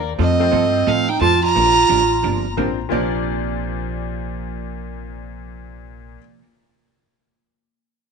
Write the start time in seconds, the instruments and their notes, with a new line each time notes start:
Already playing: upright bass D#2, electric slide guitar A#4
0.18 upright bass F2, hollow-body jazz guitar F3 A3 C4 F4 A4, clarinet C4, fiddle D#5
0.39 honky-tonk piano A3 C4 F4 A4 C5
0.51 upright bass G2, hollow-body jazz guitar F3 A3 C4 F4 A4
0.86 upright bass A2, hollow-body jazz guitar F3 A3 C4 F4 A4, clarinet C4, fiddle F5
1.09 clarinet D#4, fiddle G5
1.21 upright bass F2, hollow-body jazz guitar F3 A3 C4 F4 A4, clarinet F4, fiddle A5
1.43 clarinet F4, fiddle A#5
1.55 upright bass A#1, hollow-body jazz guitar C3 F3 A#3 D4 A#4
1.88 upright bass A1, hollow-body jazz guitar C3 F3 A#3 D4 A#4
2.23 upright bass G1, hollow-body jazz guitar C3 F3 A#3 D4 A#4
2.57 upright bass A1, hollow-body jazz guitar C3 F3 A#3 D4 A#4, honky-tonk piano C4 D4 F4 A#4 C5
2.89 upright bass A#1, honky-tonk piano A#2 A#3 F4 C5 D5, hollow-body jazz guitar A#2 C3 F3 A#3 D4
2.93 hollow-body jazz guitar A#4